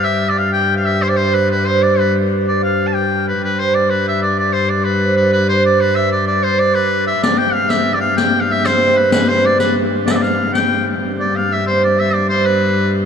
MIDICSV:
0, 0, Header, 1, 5, 480
1, 0, Start_track
1, 0, Tempo, 318979
1, 796, Time_signature, 6, 3, 24, 8
1, 10872, Tempo, 315457
1, 19742, End_track
2, 0, Start_track
2, 0, Title_t, "Harp"
2, 0, Program_c, 0, 46
2, 0, Note_on_c, 0, 71, 67
2, 0, Note_on_c, 0, 74, 79
2, 0, Note_on_c, 0, 79, 83
2, 440, Note_off_c, 0, 74, 0
2, 549, Note_on_c, 0, 77, 81
2, 805, Note_off_c, 0, 79, 0
2, 811, Note_on_c, 0, 79, 81
2, 1146, Note_off_c, 0, 77, 0
2, 1152, Note_on_c, 0, 77, 64
2, 1513, Note_on_c, 0, 72, 68
2, 1603, Note_off_c, 0, 71, 0
2, 1731, Note_off_c, 0, 72, 0
2, 1737, Note_on_c, 0, 72, 65
2, 2008, Note_on_c, 0, 71, 68
2, 2098, Note_off_c, 0, 72, 0
2, 2236, Note_off_c, 0, 71, 0
2, 2242, Note_on_c, 0, 71, 71
2, 2488, Note_on_c, 0, 72, 78
2, 2578, Note_off_c, 0, 71, 0
2, 3086, Note_off_c, 0, 72, 0
2, 3147, Note_off_c, 0, 79, 0
2, 3657, Note_off_c, 0, 77, 0
2, 3692, Note_on_c, 0, 74, 65
2, 3936, Note_on_c, 0, 77, 74
2, 4408, Note_on_c, 0, 79, 74
2, 4899, Note_on_c, 0, 71, 60
2, 5135, Note_off_c, 0, 71, 0
2, 5141, Note_on_c, 0, 71, 65
2, 5367, Note_on_c, 0, 72, 64
2, 5457, Note_off_c, 0, 71, 0
2, 5598, Note_off_c, 0, 74, 0
2, 5604, Note_on_c, 0, 74, 68
2, 5851, Note_on_c, 0, 71, 63
2, 5942, Note_off_c, 0, 72, 0
2, 6087, Note_on_c, 0, 76, 75
2, 6177, Note_off_c, 0, 77, 0
2, 6569, Note_off_c, 0, 74, 0
2, 6745, Note_off_c, 0, 79, 0
2, 7279, Note_off_c, 0, 71, 0
2, 7285, Note_on_c, 0, 71, 67
2, 7533, Note_on_c, 0, 72, 71
2, 7623, Note_off_c, 0, 71, 0
2, 8021, Note_on_c, 0, 71, 75
2, 8112, Note_off_c, 0, 72, 0
2, 8356, Note_off_c, 0, 71, 0
2, 8484, Note_on_c, 0, 74, 73
2, 8680, Note_off_c, 0, 76, 0
2, 8961, Note_on_c, 0, 76, 85
2, 9443, Note_off_c, 0, 74, 0
2, 9449, Note_on_c, 0, 74, 76
2, 9651, Note_on_c, 0, 72, 78
2, 9838, Note_off_c, 0, 76, 0
2, 9844, Note_on_c, 0, 76, 50
2, 9912, Note_off_c, 0, 74, 0
2, 9918, Note_on_c, 0, 74, 70
2, 10248, Note_off_c, 0, 72, 0
2, 10633, Note_off_c, 0, 76, 0
2, 10639, Note_on_c, 0, 76, 81
2, 10883, Note_off_c, 0, 74, 0
2, 10890, Note_on_c, 0, 74, 77
2, 11117, Note_on_c, 0, 79, 84
2, 11370, Note_on_c, 0, 77, 79
2, 11462, Note_off_c, 0, 76, 0
2, 11612, Note_on_c, 0, 76, 78
2, 11703, Note_off_c, 0, 77, 0
2, 11963, Note_off_c, 0, 74, 0
2, 12100, Note_on_c, 0, 77, 85
2, 12192, Note_off_c, 0, 76, 0
2, 12312, Note_off_c, 0, 79, 0
2, 12318, Note_on_c, 0, 79, 83
2, 12675, Note_off_c, 0, 77, 0
2, 12681, Note_on_c, 0, 77, 69
2, 12883, Note_off_c, 0, 77, 0
2, 13045, Note_on_c, 0, 72, 68
2, 13281, Note_off_c, 0, 72, 0
2, 13287, Note_on_c, 0, 72, 71
2, 13520, Note_on_c, 0, 71, 70
2, 13611, Note_off_c, 0, 72, 0
2, 13752, Note_off_c, 0, 71, 0
2, 13758, Note_on_c, 0, 71, 79
2, 13989, Note_on_c, 0, 72, 75
2, 14080, Note_off_c, 0, 71, 0
2, 14230, Note_on_c, 0, 74, 68
2, 14467, Note_on_c, 0, 71, 64
2, 14559, Note_off_c, 0, 72, 0
2, 14681, Note_off_c, 0, 79, 0
2, 15173, Note_off_c, 0, 74, 0
2, 15179, Note_on_c, 0, 74, 62
2, 15311, Note_off_c, 0, 74, 0
2, 15317, Note_on_c, 0, 74, 64
2, 15431, Note_on_c, 0, 77, 83
2, 15910, Note_on_c, 0, 79, 79
2, 16884, Note_off_c, 0, 74, 0
2, 16890, Note_on_c, 0, 74, 70
2, 17145, Note_off_c, 0, 77, 0
2, 17151, Note_on_c, 0, 77, 68
2, 17386, Note_on_c, 0, 76, 72
2, 17477, Note_off_c, 0, 77, 0
2, 17585, Note_off_c, 0, 71, 0
2, 17612, Note_on_c, 0, 72, 67
2, 17848, Note_off_c, 0, 74, 0
2, 17854, Note_on_c, 0, 74, 73
2, 18079, Note_off_c, 0, 76, 0
2, 18085, Note_on_c, 0, 76, 80
2, 18273, Note_off_c, 0, 79, 0
2, 18341, Note_off_c, 0, 74, 0
2, 18568, Note_off_c, 0, 72, 0
2, 18574, Note_on_c, 0, 72, 66
2, 18809, Note_on_c, 0, 71, 65
2, 18900, Note_off_c, 0, 72, 0
2, 19742, Note_off_c, 0, 71, 0
2, 19742, Note_off_c, 0, 76, 0
2, 19742, End_track
3, 0, Start_track
3, 0, Title_t, "Shawm"
3, 0, Program_c, 1, 111
3, 53, Note_on_c, 1, 76, 84
3, 437, Note_on_c, 1, 74, 83
3, 460, Note_off_c, 1, 76, 0
3, 566, Note_on_c, 1, 77, 83
3, 589, Note_off_c, 1, 74, 0
3, 785, Note_off_c, 1, 77, 0
3, 794, Note_on_c, 1, 79, 88
3, 1132, Note_off_c, 1, 79, 0
3, 1155, Note_on_c, 1, 77, 77
3, 1281, Note_on_c, 1, 76, 80
3, 1304, Note_off_c, 1, 77, 0
3, 1532, Note_on_c, 1, 72, 77
3, 1554, Note_off_c, 1, 76, 0
3, 1633, Note_on_c, 1, 74, 69
3, 1655, Note_off_c, 1, 72, 0
3, 1749, Note_on_c, 1, 72, 78
3, 1771, Note_off_c, 1, 74, 0
3, 2017, Note_on_c, 1, 71, 78
3, 2040, Note_off_c, 1, 72, 0
3, 2250, Note_off_c, 1, 71, 0
3, 2269, Note_on_c, 1, 71, 78
3, 2499, Note_on_c, 1, 72, 74
3, 2522, Note_off_c, 1, 71, 0
3, 2742, Note_on_c, 1, 74, 75
3, 2764, Note_off_c, 1, 72, 0
3, 2994, Note_on_c, 1, 71, 71
3, 3017, Note_off_c, 1, 74, 0
3, 3220, Note_off_c, 1, 71, 0
3, 3733, Note_on_c, 1, 74, 69
3, 3935, Note_off_c, 1, 74, 0
3, 3956, Note_on_c, 1, 77, 79
3, 4317, Note_on_c, 1, 81, 60
3, 4339, Note_off_c, 1, 77, 0
3, 4428, Note_on_c, 1, 79, 82
3, 4451, Note_off_c, 1, 81, 0
3, 4898, Note_off_c, 1, 79, 0
3, 4933, Note_on_c, 1, 71, 63
3, 5135, Note_off_c, 1, 71, 0
3, 5176, Note_on_c, 1, 71, 73
3, 5410, Note_on_c, 1, 72, 74
3, 5433, Note_off_c, 1, 71, 0
3, 5632, Note_on_c, 1, 74, 70
3, 5655, Note_off_c, 1, 72, 0
3, 5871, Note_on_c, 1, 71, 76
3, 5894, Note_off_c, 1, 74, 0
3, 6100, Note_off_c, 1, 71, 0
3, 6136, Note_on_c, 1, 76, 75
3, 6337, Note_off_c, 1, 76, 0
3, 6347, Note_on_c, 1, 74, 75
3, 6561, Note_off_c, 1, 74, 0
3, 6605, Note_on_c, 1, 74, 79
3, 6814, Note_on_c, 1, 72, 74
3, 6837, Note_off_c, 1, 74, 0
3, 7059, Note_on_c, 1, 74, 80
3, 7082, Note_off_c, 1, 72, 0
3, 7290, Note_on_c, 1, 71, 83
3, 7313, Note_off_c, 1, 74, 0
3, 7768, Note_off_c, 1, 71, 0
3, 7775, Note_on_c, 1, 71, 75
3, 7994, Note_off_c, 1, 71, 0
3, 8015, Note_on_c, 1, 71, 87
3, 8233, Note_off_c, 1, 71, 0
3, 8257, Note_on_c, 1, 72, 82
3, 8474, Note_off_c, 1, 72, 0
3, 8505, Note_on_c, 1, 74, 79
3, 8742, Note_on_c, 1, 71, 84
3, 8765, Note_off_c, 1, 74, 0
3, 8959, Note_on_c, 1, 76, 79
3, 8982, Note_off_c, 1, 71, 0
3, 9197, Note_off_c, 1, 76, 0
3, 9206, Note_on_c, 1, 74, 77
3, 9427, Note_off_c, 1, 74, 0
3, 9440, Note_on_c, 1, 74, 84
3, 9680, Note_on_c, 1, 72, 80
3, 9702, Note_off_c, 1, 74, 0
3, 9916, Note_on_c, 1, 74, 85
3, 9938, Note_off_c, 1, 72, 0
3, 10152, Note_on_c, 1, 71, 80
3, 10175, Note_off_c, 1, 74, 0
3, 10633, Note_off_c, 1, 71, 0
3, 10640, Note_on_c, 1, 76, 84
3, 10860, Note_off_c, 1, 76, 0
3, 10881, Note_on_c, 1, 74, 87
3, 11107, Note_on_c, 1, 79, 90
3, 11130, Note_off_c, 1, 74, 0
3, 11332, Note_on_c, 1, 77, 93
3, 11355, Note_off_c, 1, 79, 0
3, 11579, Note_on_c, 1, 76, 93
3, 11602, Note_off_c, 1, 77, 0
3, 11956, Note_on_c, 1, 74, 84
3, 11979, Note_off_c, 1, 76, 0
3, 12051, Note_off_c, 1, 74, 0
3, 12060, Note_on_c, 1, 77, 87
3, 12294, Note_off_c, 1, 77, 0
3, 12313, Note_on_c, 1, 79, 89
3, 12670, Note_on_c, 1, 77, 80
3, 12693, Note_off_c, 1, 79, 0
3, 12825, Note_on_c, 1, 76, 89
3, 12847, Note_off_c, 1, 77, 0
3, 13052, Note_on_c, 1, 72, 86
3, 13074, Note_off_c, 1, 76, 0
3, 13526, Note_on_c, 1, 71, 74
3, 13549, Note_off_c, 1, 72, 0
3, 13750, Note_off_c, 1, 71, 0
3, 13759, Note_on_c, 1, 71, 83
3, 14013, Note_on_c, 1, 72, 82
3, 14035, Note_off_c, 1, 71, 0
3, 14261, Note_on_c, 1, 74, 83
3, 14284, Note_off_c, 1, 72, 0
3, 14468, Note_off_c, 1, 74, 0
3, 14477, Note_on_c, 1, 71, 74
3, 14706, Note_off_c, 1, 71, 0
3, 15183, Note_on_c, 1, 74, 70
3, 15259, Note_on_c, 1, 76, 63
3, 15281, Note_off_c, 1, 74, 0
3, 15326, Note_on_c, 1, 74, 74
3, 15349, Note_off_c, 1, 76, 0
3, 15425, Note_on_c, 1, 77, 84
3, 15448, Note_off_c, 1, 74, 0
3, 15895, Note_off_c, 1, 77, 0
3, 15904, Note_on_c, 1, 79, 88
3, 16417, Note_off_c, 1, 79, 0
3, 16918, Note_on_c, 1, 74, 75
3, 17165, Note_on_c, 1, 77, 82
3, 17188, Note_off_c, 1, 74, 0
3, 17409, Note_on_c, 1, 76, 87
3, 17432, Note_off_c, 1, 77, 0
3, 17627, Note_off_c, 1, 76, 0
3, 17636, Note_on_c, 1, 72, 70
3, 17844, Note_off_c, 1, 72, 0
3, 17887, Note_on_c, 1, 74, 76
3, 18128, Note_on_c, 1, 76, 86
3, 18151, Note_off_c, 1, 74, 0
3, 18353, Note_on_c, 1, 74, 79
3, 18376, Note_off_c, 1, 76, 0
3, 18577, Note_off_c, 1, 74, 0
3, 18585, Note_on_c, 1, 72, 74
3, 18830, Note_on_c, 1, 71, 80
3, 18853, Note_off_c, 1, 72, 0
3, 19532, Note_off_c, 1, 71, 0
3, 19742, End_track
4, 0, Start_track
4, 0, Title_t, "Viola da gamba"
4, 0, Program_c, 2, 42
4, 0, Note_on_c, 2, 43, 61
4, 5129, Note_off_c, 2, 43, 0
4, 5138, Note_on_c, 2, 43, 62
4, 10874, Note_off_c, 2, 43, 0
4, 10883, Note_on_c, 2, 43, 61
4, 16647, Note_off_c, 2, 43, 0
4, 16656, Note_on_c, 2, 43, 63
4, 19742, Note_off_c, 2, 43, 0
4, 19742, End_track
5, 0, Start_track
5, 0, Title_t, "Riq"
5, 10888, Note_on_c, 9, 54, 53
5, 11040, Note_off_c, 9, 54, 0
5, 11596, Note_on_c, 9, 54, 42
5, 11748, Note_off_c, 9, 54, 0
5, 12326, Note_on_c, 9, 54, 50
5, 12478, Note_off_c, 9, 54, 0
5, 13044, Note_on_c, 9, 54, 45
5, 13196, Note_off_c, 9, 54, 0
5, 13761, Note_on_c, 9, 54, 65
5, 13913, Note_off_c, 9, 54, 0
5, 14487, Note_on_c, 9, 54, 46
5, 14639, Note_off_c, 9, 54, 0
5, 15210, Note_on_c, 9, 54, 64
5, 15362, Note_off_c, 9, 54, 0
5, 15460, Note_on_c, 9, 54, 19
5, 15612, Note_off_c, 9, 54, 0
5, 15934, Note_on_c, 9, 54, 46
5, 16086, Note_off_c, 9, 54, 0
5, 19742, End_track
0, 0, End_of_file